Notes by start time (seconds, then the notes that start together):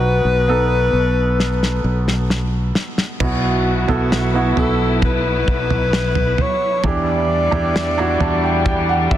Already playing: B1 B2 B3 D#4 F#4 B4
0.25 B1
0.48 B3 D#4 A4
0.93 B1
1.40 snare
1.63 snare
1.84 B1
2.08 snare
2.30 snare
2.75 snare
2.98 snare
3.20 B1 B2 F#3 B3 E4 F#4, kick, floor tom, crash
3.88 B1 B3 E4 A4, floor tom
4.12 snare
4.34 B3 E4 F#4
4.57 B1 A4, floor tom
5.02 B4, kick, floor tom
5.48 B1, kick
5.70 floor tom
5.93 snare
6.15 floor tom
6.38 C#5, floor tom
6.83 E2 E3 G3 D4 E4 G4, kick, floor tom
6.88 D5
7.51 E2 D4 E4 G4, floor tom
7.76 snare
7.98 D4 E4 F#4
8.20 E2 A5, floor tom
8.43 G5
8.66 G5, kick, floor tom
8.89 F#5
9.11 E2 E5, kick